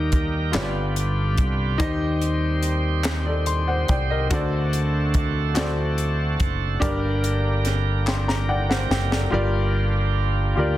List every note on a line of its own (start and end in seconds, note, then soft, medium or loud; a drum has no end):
0.00 0.56 D#2 medium
0.00 0.50 D#3 medium
0.00 0.54 D#3 medium
0.00 4.27 G3 soft
0.00 0.54 A#3 soft
0.00 0.16 D#4 medium
0.00 0.17 G4 medium
0.00 4.27 G4 soft
0.00 0.17 A#4 medium
0.00 0.54 A#4 medium
0.00 0.18 D#5 medium
0.12 kick medium
0.12 closed hi-hat soft
0.52 1.38 G1 medium
0.52 1.76 G2 medium
0.52 1.79 D3 medium
0.52 1.79 B3 medium
0.52 1.41 F4 medium
0.52 1.79 F4 medium
0.52 1.42 G4 medium
0.52 1.43 B4 medium
0.52 0.61 C#5 medium
0.52 snare medium
0.52 clap medium
0.52 closed hi-hat medium
0.62 1.46 D5 medium
0.96 closed hi-hat soft
1.38 1.77 C2 medium
1.38 kick medium
1.38 closed hi-hat soft
1.78 3.01 D#3 medium
1.78 4.28 D#3 medium
1.78 6.77 C4 soft
1.78 2.67 D#4 medium
1.78 2.68 G4 medium
1.78 4.28 C5 medium
1.78 2.68 C5 medium
1.78 2.69 D#5 medium
1.78 kick loud
1.78 closed hi-hat medium
2.22 closed hi-hat soft
2.63 closed hi-hat soft
3.04 snare medium
3.04 clap medium
3.04 closed hi-hat medium
3.26 3.66 A4 soft
3.26 3.66 D5 medium
3.46 4.27 C6 medium
3.46 closed hi-hat soft
3.68 3.88 C5 soft
3.68 3.88 F#5 medium
3.88 4.28 C2 medium
3.88 4.09 D5 soft
3.88 4.09 G5 medium
3.88 kick medium
3.88 closed hi-hat soft
4.10 4.50 A#4 soft
4.10 4.50 D#5 medium
4.30 6.36 D2 medium
4.30 5.53 D3 medium
4.30 9.29 D3 medium
4.30 6.79 A3 medium
4.30 5.19 F#4 medium
4.30 6.79 F#4 medium
4.30 5.19 A4 medium
4.30 6.79 A4 medium
4.30 5.20 C5 medium
4.30 5.20 D5 medium
4.30 kick loud
4.30 closed hi-hat medium
4.73 closed hi-hat soft
5.14 kick medium
5.14 closed hi-hat soft
5.54 6.43 F#4 medium
5.54 6.44 A4 medium
5.54 6.45 C5 medium
5.54 snare loud
5.54 clap medium
5.54 closed hi-hat medium
5.58 6.45 D5 medium
5.98 closed hi-hat soft
6.40 6.78 F#1 medium
6.40 kick medium
6.40 closed hi-hat soft
6.80 8.86 G1 medium
6.80 8.03 G2 medium
6.80 9.30 G3 soft
6.80 9.30 A#3 soft
6.80 7.69 D4 medium
6.80 7.69 G4 medium
6.80 9.30 G4 soft
6.80 7.70 A#4 medium
6.80 9.30 A#4 medium
6.80 7.70 D5 medium
6.80 kick medium
6.80 closed hi-hat medium
7.24 closed hi-hat soft
7.65 snare soft
7.65 closed hi-hat soft
8.07 8.27 G5 soft
8.07 8.27 C6 soft
8.07 snare soft
8.07 clap medium
8.28 8.48 A#5 medium
8.28 snare soft
8.49 8.69 D5 medium
8.49 8.68 F#5 medium
8.49 8.69 G5 medium
8.69 9.09 C5 soft
8.69 9.09 F#5 medium
8.69 snare medium
8.90 9.29 F#1 medium
8.90 9.29 G5 medium
8.90 snare medium
9.12 9.51 A4 soft
9.12 9.32 D5 medium
9.12 snare medium
9.30 10.53 G1 medium
9.30 10.53 G2 medium
9.30 10.78 D3 medium
9.30 10.78 G3 medium
9.30 10.78 A#3 soft
9.30 10.19 F4 medium
9.30 10.78 F4 medium
9.30 10.78 G4 medium
9.30 10.20 G4 medium
9.30 10.20 A#4 medium
9.30 10.21 D5 medium
10.56 10.78 D2 medium
10.56 10.78 F4 medium
10.56 10.78 G4 medium
10.56 10.78 A#4 medium
10.56 10.78 D5 medium